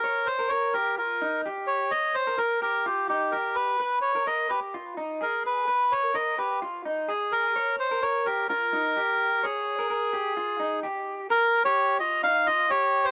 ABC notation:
X:1
M:4/4
L:1/16
Q:1/4=128
K:Ebmix
V:1 name="Melodica"
B2 c2 d2 B2 B4 z2 d2 | e2 c2 B2 B2 G2 G2 B2 _c2- | _c2 d2 e2 c2 z4 B2 c2- | _c2 d2 e2 c2 z4 A2 B2- |
B2 c2 d2 B2 B8 | A12 z4 | B3 d3 e2 f2 e2 d3 c |]
V:2 name="Clean electric guitar"
d3 B B2 G2 F2 E2 G4 | d3 B B2 G2 F2 E2 G4 | _c3 B B2 G2 F2 E2 A4 | _c3 B B2 G2 F2 E2 A4 |
d3 B B2 G2 F2 E2 G4 | d3 B B2 G2 F2 E2 G4 | B3 G3 F2 E2 F2 G4 |]